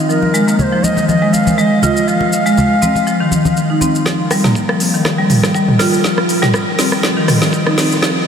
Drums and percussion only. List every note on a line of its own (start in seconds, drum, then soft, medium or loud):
0.10 shaker soft
0.22 muted conga soft
0.35 shaker medium
0.48 shaker soft
0.59 muted conga soft
0.59 low conga medium
0.59 shaker soft
0.84 high conga medium
0.84 shaker medium
0.97 muted conga soft
0.97 shaker soft
1.08 high conga medium
1.08 shaker soft
1.33 muted conga soft
1.33 shaker medium
1.47 high conga medium
1.47 shaker soft
1.58 shaker soft
1.82 muted conga medium
1.82 high conga medium
1.82 low conga medium
1.82 shaker medium
1.97 shaker soft
2.08 shaker soft
2.20 muted conga medium
2.33 shaker medium
2.46 shaker soft
2.57 muted conga soft
2.57 low conga medium
2.57 shaker soft
2.82 high conga medium
2.82 shaker medium
2.95 muted conga soft
2.95 shaker soft
3.07 shaker soft
3.31 muted conga soft
3.31 high conga medium
3.31 shaker medium
3.45 high conga medium
3.45 shaker soft
3.57 shaker soft
3.81 muted conga medium
3.81 high conga medium
3.81 shaker medium
3.95 shaker soft
4.06 kick loud
4.06 snare soft
4.06 shaker soft
4.31 cross-stick loud
4.31 open hi-hat medium
4.31 shaker medium
4.44 snare soft
4.44 mid tom medium
4.44 shaker medium
4.55 kick loud
4.55 shaker soft
4.69 cross-stick medium
4.80 open hi-hat medium
4.80 shaker medium
4.94 shaker medium
5.05 kick loud
5.05 cross-stick medium
5.05 snare medium
5.05 shaker soft
5.30 mid tom medium
5.30 open hi-hat medium
5.30 shaker medium
5.43 cross-stick medium
5.43 snare soft
5.43 shaker medium
5.54 kick loud
5.54 shaker soft
5.68 mid tom medium
5.79 cross-stick medium
5.79 snare medium
5.79 open hi-hat medium
5.79 shaker medium
5.94 shaker medium
6.04 kick loud
6.04 snare medium
6.04 shaker soft
6.18 cross-stick medium
6.29 open hi-hat medium
6.29 shaker loud
6.43 snare medium
6.43 mid tom medium
6.43 shaker medium
6.54 kick loud
6.54 cross-stick loud
6.54 shaker soft
6.79 snare medium
6.79 open hi-hat medium
6.79 shaker medium
6.92 cross-stick medium
6.92 shaker medium
7.03 kick loud
7.03 snare medium
7.03 shaker soft
7.28 cross-stick medium
7.28 mid tom medium
7.28 open hi-hat medium
7.28 shaker medium
7.42 snare medium
7.42 shaker medium
7.53 kick loud
7.53 shaker soft
7.67 cross-stick medium
7.78 snare medium
7.78 open hi-hat medium
7.78 shaker loud
7.92 shaker medium
8.03 kick loud
8.03 snare medium
8.03 shaker soft